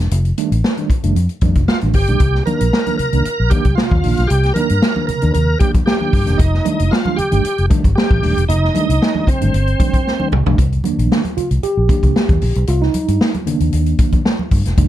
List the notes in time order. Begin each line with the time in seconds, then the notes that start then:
0.11 F1, closed hi-hat
0.25 closed hi-hat
0.38 D#3 G3 A3 D4, closed hi-hat
0.52 A1, closed hi-hat
0.64 snare
0.77 D#3 G3 A3 D4, closed hi-hat
0.90 muted fingered electric bass stroke, kick, closed hi-hat
1.03 F1 D#3 G3 A3 D4, closed hi-hat
1.16 F2, closed hi-hat
1.29 closed hi-hat
1.41 F2 D#3 G3 A3 D4, kick, closed hi-hat
1.55 F1 A3 D4, kick, closed hi-hat
1.68 F4, snare
1.81 A1 D#3 G3 A3 D4, closed hi-hat
1.93 G1 G4, kick, open hi-hat
2.07 B1 D#3 G3 A3 D4, closed hi-hat
2.20 C2 C3, kick, closed hi-hat
2.35 snare
2.46 D#3 A#3 D4 A#4, closed hi-hat, high conga
2.61 A#1 A#3 D4, closed hi-hat
2.73 snare, muted conga
2.86 D#3 A#3 D4, closed hi-hat, high conga
2.97 C3 A#4, muted fingered electric bass stroke, closed hi-hat, muted conga, low conga
3.13 C2 D#3 A#3 D4, closed hi-hat
3.25 muted fingered electric bass stroke, closed hi-hat
3.40 A#1
3.50 D#3 A#3 D4 G4, kick, closed hi-hat, muted conga, high conga
3.65 C2, kick, closed hi-hat, high conga
3.75 C3 F4, snare, muted conga
3.91 D#2, kick, high conga
4.04 A#1 D#3 A#3 D4, open hi-hat, low conga
4.17 B1 A#3 D4, snare, closed hi-hat
4.27 C2 C3 G4, closed hi-hat
4.43 snare, closed hi-hat
4.54 D#3 A#3 D4 A#4, closed hi-hat, muted conga, high conga
4.69 G2 A#3 D4, closed hi-hat
4.82 snare
4.96 D#3 A#3 D4, high conga
5.07 C3 A#4, muted fingered electric bass stroke, closed hi-hat, low conga
5.22 D#2 D#3 A#3 D4, closed hi-hat
5.34 D#2 C3 A#4, closed hi-hat, muted conga
5.59 D#3 A#3 D4 G4, kick, closed hi-hat, high conga
5.74 A#3 D4, kick, closed hi-hat, high conga
5.86 G4, snare, muted conga
6.01 D#3 A#3 D4, high conga
6.13 G2 C3, kick, open hi-hat, muted conga, low conga
6.26 E1 D#3 A#3 D4, snare, closed hi-hat
6.38 F1 D#4, kick, closed hi-hat, muted conga
6.54 snare
6.65 D#3 G3 A3 D4, closed hi-hat, high conga
6.79 F1 A3 D4, closed hi-hat
6.91 F4, snare, muted conga
7.05 D#3 G3 A3 D4, high conga
7.16 G4, muted fingered electric bass stroke, closed hi-hat, low conga
7.31 G1 D#3 G3 A3 D4, closed hi-hat
7.45 closed hi-hat
7.58 F1, closed hi-hat
7.70 D#3 G3 A3 D4, kick, closed hi-hat, muted conga, high conga
7.84 G1, kick, closed hi-hat, high conga
7.95 G4, snare
8.11 A1, kick, high conga
8.22 D#1 D#3 G3 A3 D4, open hi-hat, muted conga, low conga
8.37 E1, closed hi-hat
8.48 F1 D#4, closed hi-hat, muted conga, low conga
8.64 snare
8.74 D#3 G3 A3 D4, closed hi-hat, muted conga, high conga
8.89 C2 A3 D4, closed hi-hat
9.02 snare
9.15 D#3 G3 A3 D4, high conga
9.27 C4, muted fingered electric bass stroke, kick, closed hi-hat, low conga
9.41 G1 D#3 G3 A3 D4, closed hi-hat
9.54 G1, closed hi-hat
9.67 closed hi-hat
9.80 D#3 G3 A3 D4, kick, closed hi-hat, muted conga, high conga
9.93 A3 D4, kick, closed hi-hat, high conga
10.07 snare
10.20 D#3 G3 A3 D4, high conga
10.32 C2, mid tom, muted conga, low conga
10.46 B1 D#3 G3 A3 D4, floor tom
10.58 C2, kick, closed hi-hat
10.72 closed hi-hat
10.84 D#3 A#3 D4, closed hi-hat, muted conga, high conga
10.98 A#1, closed hi-hat
11.12 snare
11.25 closed hi-hat, high conga
11.37 F4, muted fingered electric bass stroke, closed hi-hat, low conga
11.51 C2, closed hi-hat
11.63 G4, closed hi-hat, muted conga
11.77 A#1
11.89 D#3 A#3 D4, kick, closed hi-hat, high conga
12.03 C2, kick, closed hi-hat, high conga
12.16 snare, muted conga
12.29 D#2, kick, closed hi-hat, high conga
12.41 A#1, open hi-hat, low conga
12.55 B1, closed hi-hat
12.67 C2 F4, closed hi-hat, muted conga
12.82 D#4, snare
12.94 closed hi-hat, muted conga, high conga
13.08 G2, closed hi-hat
13.21 snare, muted conga
13.34 closed hi-hat, high conga
13.46 D#3 A#3 D4, muted fingered electric bass stroke, closed hi-hat, muted conga, low conga
13.60 D#2, closed hi-hat
13.73 D#2, closed hi-hat
13.86 closed hi-hat
13.99 kick, closed hi-hat, muted conga, high conga
14.12 kick, closed hi-hat, high conga
14.25 snare, muted conga
14.39 high conga
14.51 G2, kick, open hi-hat, muted conga, low conga
14.65 E1, snare, closed hi-hat
14.77 F1 D#3 G3 A3 D4, kick, closed hi-hat, muted conga